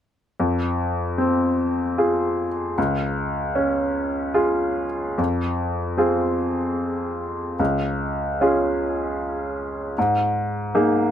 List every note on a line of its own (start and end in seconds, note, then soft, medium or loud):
0.40 2.73 F2 soft
1.18 2.46 C4 soft
1.98 2.73 F4 soft
1.98 2.73 G#4 soft
2.78 5.15 C#2 soft
3.55 4.86 C#4 soft
4.34 5.14 F4 soft
4.34 5.14 G#4 soft
5.18 5.96 F2 soft
5.97 7.55 C4 soft
5.97 7.55 F4 soft
5.97 7.55 G#4 soft
7.59 8.37 C#2 soft
8.41 9.93 C#4 soft
8.41 9.94 F4 soft
8.41 9.94 G#4 soft
9.98 10.73 G#2 soft
10.75 11.11 A#3 soft
10.75 11.11 D#4 soft
10.75 11.11 G#4 soft